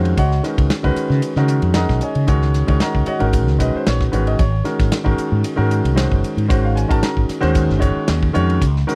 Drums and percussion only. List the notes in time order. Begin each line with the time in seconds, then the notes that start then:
0.05 ride
0.17 kick, hi-hat pedal, ride
0.32 snare
0.44 snare, hi-hat pedal, ride
0.58 kick, ride
0.70 snare, hi-hat pedal, ride
0.84 kick
0.96 hi-hat pedal, ride
1.11 snare
1.22 hi-hat pedal, ride
1.36 snare
1.48 hi-hat pedal, ride
1.62 ride
1.74 snare, hi-hat pedal, ride
1.89 kick, snare
2.01 hi-hat pedal, ride
2.15 ride
2.28 kick, hi-hat pedal, ride
2.42 snare
2.54 snare, hi-hat pedal, ride
2.68 kick, ride
2.80 snare, hi-hat pedal, ride
2.95 kick
3.06 hi-hat pedal, ride
3.20 ride
3.33 kick, hi-hat pedal, ride
3.47 snare
3.60 kick, hi-hat pedal, ride
3.87 snare, hi-hat pedal, ride
4.00 kick, snare
4.13 hi-hat pedal, ride
4.27 ride
4.39 kick, hi-hat pedal, ride
4.65 snare, hi-hat pedal, ride
4.80 kick, snare, ride
4.92 snare, hi-hat pedal, ride
5.06 kick
5.18 hi-hat pedal, ride
5.44 hi-hat pedal, ride
5.71 hi-hat pedal, ride
5.85 ride
5.97 snare, hi-hat pedal, ride
6.12 kick
6.24 hi-hat pedal, ride
6.38 ride
6.50 kick, hi-hat pedal, ride
6.77 hi-hat pedal, ride
6.91 kick, ride
7.03 snare, hi-hat pedal, ride
7.17 kick
7.29 snare, hi-hat pedal, ride
7.43 snare, ride
7.55 kick, hi-hat pedal, ride
7.70 snare
7.82 kick, hi-hat pedal, ride
8.08 snare, hi-hat pedal, ride
8.23 kick
8.35 hi-hat pedal, ride
8.50 ride
8.62 kick, hi-hat pedal, ride
8.76 snare
8.89 snare, hi-hat pedal, ride